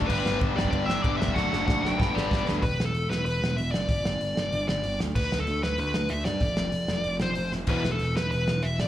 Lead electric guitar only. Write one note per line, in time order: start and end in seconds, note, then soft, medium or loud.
0.07 0.38 B4 medium
0.57 0.70 D5 loud
0.71 0.85 D5 loud
0.85 1.02 E5 medium
1.02 1.16 D5 loud
1.17 1.35 E5 loud
1.34 1.65 F#5 loud
1.67 1.82 F#5 loud
1.82 2.42 G5 loud
2.16 2.45 D5 loud
2.63 2.85 B4 loud
2.85 3.10 A4 loud
3.10 3.24 B4 medium
3.25 3.55 B4 medium
3.57 3.71 E5 loud
3.71 4.67 D5 loud
4.68 4.98 D5 medium
5.15 5.40 B4 medium
5.40 5.63 A4 medium
5.63 5.78 B4 medium
5.80 6.12 B4 medium
6.10 6.25 E5 loud
6.25 7.16 D5 loud
7.22 7.51 C5 medium
7.69 7.91 B4 medium
7.92 8.16 A4 loud
8.16 8.30 B4 medium
8.31 8.64 B4 loud
8.63 8.80 E5 medium
8.80 8.88 D5 medium